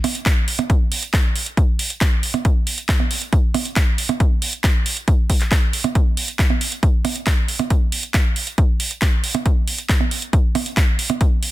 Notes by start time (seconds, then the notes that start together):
0.04 open hi-hat, percussion blips
0.15 closed hi-hat
0.26 kick, clap, closed hi-hat
0.48 open hi-hat
0.59 closed hi-hat, percussion blips
0.70 kick, closed hi-hat
0.92 open hi-hat
1.03 closed hi-hat
1.14 kick, clap, closed hi-hat
1.36 open hi-hat
1.46 closed hi-hat
1.57 kick, closed hi-hat
1.79 open hi-hat
1.90 closed hi-hat
2.01 kick, clap, closed hi-hat
2.23 open hi-hat
2.34 closed hi-hat, percussion blips
2.45 kick, closed hi-hat
2.67 open hi-hat
2.78 closed hi-hat
2.89 kick, clap, closed hi-hat
3.00 percussion blips
3.11 open hi-hat
3.22 closed hi-hat
3.33 kick, closed hi-hat
3.54 open hi-hat, percussion blips
3.65 closed hi-hat
3.76 kick, clap, closed hi-hat
3.98 open hi-hat
4.09 closed hi-hat, percussion blips
4.20 kick, closed hi-hat
4.42 open hi-hat
4.53 closed hi-hat
4.64 kick, clap, closed hi-hat
4.86 open hi-hat
4.97 closed hi-hat
5.08 kick, closed hi-hat
5.30 kick, open hi-hat
5.41 clap, closed hi-hat
5.52 kick, clap, closed hi-hat
5.73 open hi-hat
5.84 closed hi-hat, percussion blips
5.95 kick, closed hi-hat
6.17 open hi-hat
6.28 closed hi-hat
6.39 kick, clap, closed hi-hat
6.50 percussion blips
6.61 open hi-hat
6.72 closed hi-hat
6.83 kick, closed hi-hat
7.05 open hi-hat, percussion blips
7.16 closed hi-hat
7.27 kick, clap, closed hi-hat
7.48 open hi-hat
7.59 closed hi-hat, percussion blips
7.70 kick, closed hi-hat
7.92 open hi-hat
8.03 closed hi-hat
8.14 kick, clap, closed hi-hat
8.36 open hi-hat
8.47 closed hi-hat
8.58 kick, closed hi-hat
8.80 open hi-hat
8.91 closed hi-hat
9.02 kick, clap, closed hi-hat
9.24 open hi-hat
9.35 closed hi-hat, percussion blips
9.46 kick, closed hi-hat
9.68 open hi-hat
9.78 closed hi-hat
9.89 kick, clap, closed hi-hat
10.00 percussion blips
10.11 open hi-hat
10.22 closed hi-hat
10.33 kick, closed hi-hat
10.55 open hi-hat, percussion blips
10.66 closed hi-hat
10.77 kick, clap, closed hi-hat
10.99 open hi-hat
11.10 closed hi-hat, percussion blips
11.21 kick, closed hi-hat
11.43 open hi-hat